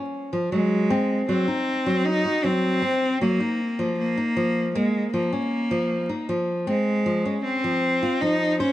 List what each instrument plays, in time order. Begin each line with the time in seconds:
Already playing: nylon-string guitar C#4
0.33 nylon-string guitar F3
0.52 nylon-string guitar F#3, cello G#3
0.90 nylon-string guitar C4
1.29 nylon-string guitar F#3, cello C4
1.48 nylon-string guitar D#4
1.86 nylon-string guitar F#3
2.05 cello D#4
2.25 nylon-string guitar F#4
2.44 nylon-string guitar F#3, cello C4
2.82 nylon-string guitar C4
3.21 nylon-string guitar F#3, cello A#3
3.40 nylon-string guitar D#4
3.79 nylon-string guitar F3
3.99 cello A#3
4.17 nylon-string guitar D#4
4.36 nylon-string guitar F3
4.75 cello G#3, nylon-string guitar A#3
5.14 nylon-string guitar F3, cello A#3
5.33 nylon-string guitar C#4
5.71 nylon-string guitar F3
6.09 nylon-string guitar D#4
6.29 nylon-string guitar F3
6.67 cello G#3, nylon-string guitar C4
7.06 nylon-string guitar F3
7.25 nylon-string guitar C#4
7.45 cello C4
7.64 nylon-string guitar F3
8.03 nylon-string guitar F4
8.22 nylon-string guitar F3, cello D#4
8.60 cello C#4, nylon-string guitar C5